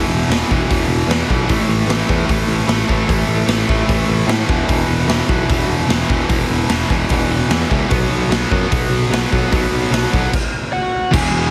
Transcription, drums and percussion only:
0.31 snare, open hi-hat
0.51 kick
0.71 kick, open hi-hat
1.11 snare, open hi-hat
1.30 kick
1.49 kick, open hi-hat
1.90 snare, open hi-hat
2.09 kick
2.29 kick, open hi-hat
2.69 snare, open hi-hat
2.89 kick
3.09 kick, open hi-hat
3.48 snare, open hi-hat
3.69 kick
3.89 kick, open hi-hat
4.29 snare, open hi-hat
4.49 kick
4.69 kick, open hi-hat
5.09 snare, open hi-hat
5.29 kick
5.49 kick, open hi-hat
5.90 snare, open hi-hat
6.10 kick
6.29 kick, open hi-hat
6.69 snare, open hi-hat
6.90 kick
7.09 kick, open hi-hat
7.50 snare, open hi-hat
7.71 kick
7.90 kick, open hi-hat
8.32 snare, open hi-hat
8.52 kick
8.72 kick, open hi-hat
9.13 snare, open hi-hat
9.33 kick
9.52 kick, open hi-hat
9.94 snare, open hi-hat
10.13 kick
10.34 kick, crash
11.14 kick, crash

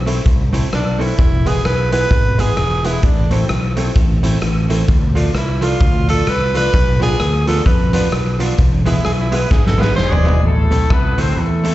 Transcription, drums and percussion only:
0.07 closed hi-hat
0.26 kick, closed hi-hat
0.54 closed hi-hat
0.72 cross-stick, closed hi-hat
1.01 open hi-hat
1.19 kick, closed hi-hat
1.46 closed hi-hat
1.65 cross-stick, closed hi-hat
1.92 closed hi-hat
2.11 kick, closed hi-hat
2.39 closed hi-hat
2.57 cross-stick, closed hi-hat
2.84 closed hi-hat
3.03 kick, closed hi-hat
3.31 closed hi-hat
3.49 cross-stick, closed hi-hat
3.77 closed hi-hat
3.96 kick, closed hi-hat
4.24 closed hi-hat
4.41 cross-stick, closed hi-hat
4.70 closed hi-hat
4.88 kick, closed hi-hat
5.17 closed hi-hat
5.35 cross-stick, closed hi-hat
5.62 closed hi-hat
5.80 kick, closed hi-hat
6.09 closed hi-hat
6.27 cross-stick, closed hi-hat
6.55 closed hi-hat
6.74 kick, closed hi-hat
7.02 closed hi-hat
7.20 cross-stick, closed hi-hat
7.47 closed hi-hat
7.66 kick, closed hi-hat
7.93 closed hi-hat
8.12 cross-stick, closed hi-hat
8.40 closed hi-hat
8.58 kick, closed hi-hat
8.86 closed hi-hat
9.05 cross-stick, closed hi-hat
9.32 closed hi-hat
9.51 kick, snare
9.67 snare
9.82 snare
9.98 snare
10.12 floor tom
10.28 floor tom
10.71 closed hi-hat
10.90 kick, cross-stick
11.18 cross-stick, closed hi-hat
11.65 closed hi-hat

